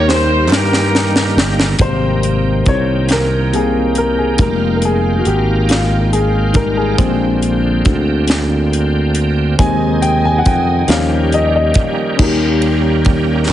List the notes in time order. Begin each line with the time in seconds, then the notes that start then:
Already playing: D#2 D#3 G3 A#3 D#4 G4 A#4
0.08 C5, snare
0.48 G2 D#4 G4 A#4, snare, clap
0.73 snare
0.95 snare
1.16 snare
1.37 G1, snare
1.60 snare
1.79 G#1 C3 D#3 G3 A#3 C5, kick, closed hi-hat
1.83 G5
2.23 closed hi-hat
2.66 C2 C#5, kick, closed hi-hat
3.09 A#4, snare, closed hi-hat
3.53 C3 A#3 G4 G#4, closed hi-hat
3.95 A#4, closed hi-hat
4.18 G#4
4.38 F1 D#3 G3 G#3 A#3 F4 A#4, kick, closed hi-hat
4.76 A#4
4.82 G#4, closed hi-hat
5.19 F#4
5.25 G#1 G4, closed hi-hat
5.69 F4, snare, closed hi-hat
6.13 G#4, closed hi-hat
6.53 D#3 G3 G#3 A#3 A#4, kick, closed hi-hat
6.77 G#4
6.97 A#1 D3 G#3 C4 G4, kick, closed hi-hat
7.42 closed hi-hat
7.85 D2, kick, closed hi-hat
8.28 snare, closed hi-hat
8.73 closed hi-hat
9.15 closed hi-hat
9.59 D#2 C3 D#3 G#3 C4 D#4 G#4 G#5, kick, closed hi-hat
10.02 G5, closed hi-hat
10.25 G#5
10.38 F#5
10.46 F2 G5, kick, closed hi-hat
10.88 D#2 F3 G3 A#3 C#4 G4 F5, snare, closed hi-hat
11.32 D#5, closed hi-hat
11.47 D5
11.56 D#5
11.74 kick, closed hi-hat
12.17 D#2 D#3 G3 A#3 C#4 D#4 F#4 G4, kick, crash
12.22 A#4
12.26 G4
12.62 ride
13.05 kick, ride
13.49 A#1, clap